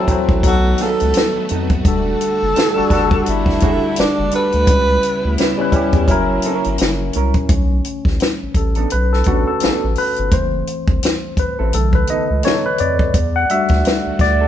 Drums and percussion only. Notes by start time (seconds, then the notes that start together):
0.08 kick, closed hi-hat
0.29 kick
0.43 kick, closed hi-hat
0.78 snare, closed hi-hat
1.00 closed hi-hat
1.14 snare, closed hi-hat
1.49 closed hi-hat
1.70 kick, closed hi-hat
1.85 kick, closed hi-hat
2.21 closed hi-hat
2.56 snare, closed hi-hat
2.90 kick, snare, closed hi-hat
3.11 kick
3.26 closed hi-hat
3.46 kick, snare
3.60 kick, closed hi-hat
3.96 snare, closed hi-hat
4.31 closed hi-hat
4.52 closed hi-hat
4.67 kick, closed hi-hat
5.03 closed hi-hat
5.38 snare, closed hi-hat
5.72 kick, closed hi-hat
5.93 kick, closed hi-hat
6.08 kick, closed hi-hat
6.42 closed hi-hat
6.64 closed hi-hat
6.78 snare, closed hi-hat
7.13 closed hi-hat
7.34 kick, closed hi-hat
7.49 kick, closed hi-hat
7.84 closed hi-hat
8.05 kick, snare
8.20 snare, closed hi-hat
8.54 kick, closed hi-hat
8.75 closed hi-hat
8.90 closed hi-hat
9.13 snare
9.24 kick, closed hi-hat
9.60 snare, closed hi-hat
9.96 open hi-hat
10.16 closed hi-hat
10.31 kick, closed hi-hat
10.67 closed hi-hat
10.88 kick
11.03 snare, closed hi-hat
11.37 kick, closed hi-hat
11.73 closed hi-hat
11.93 kick
12.07 closed hi-hat
12.43 snare, closed hi-hat
12.78 closed hi-hat
12.99 kick
13.14 kick, closed hi-hat
13.50 closed hi-hat
13.68 kick, closed hi-hat
13.73 snare
13.85 snare, closed hi-hat
14.19 kick, snare, closed hi-hat